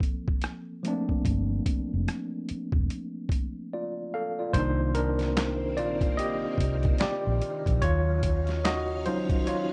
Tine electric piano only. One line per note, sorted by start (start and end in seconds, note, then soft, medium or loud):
0.00 0.79 F3 medium
0.00 0.80 A#3 medium
0.00 0.81 C4 medium
0.00 0.82 A4 medium
0.83 4.08 F3 medium
0.83 0.92 A3 medium
0.83 4.10 C4 medium
0.88 4.12 A#3 medium
0.88 4.11 D4 medium
3.73 4.12 F4 soft
3.73 4.12 D5 medium
4.14 4.37 A4 medium
4.14 4.37 F5 medium
4.39 4.78 F4 soft
4.39 4.77 D5 medium
4.53 5.12 D#3 medium
4.53 5.12 A#3 medium
4.53 4.96 D4 medium
4.53 4.93 D#4 medium
4.53 4.96 C5 loud
4.95 5.74 D4 medium
4.95 5.79 A#4 loud
5.77 5.97 F4 medium
5.77 5.95 D5 loud
6.17 6.97 G4 medium
6.17 6.96 D#5 loud
7.00 7.79 G4 medium
7.00 7.85 D5 medium
7.82 8.62 F4 medium
7.82 8.67 C#5 loud
8.65 9.04 F#4 medium
8.65 9.07 D#5 loud
9.06 9.73 F#3 medium
9.06 9.73 C#4 soft
9.06 9.45 D#4 medium
9.06 9.48 F4 medium
9.06 9.48 C5 medium
9.47 9.73 F4 medium
9.47 9.73 C#5 medium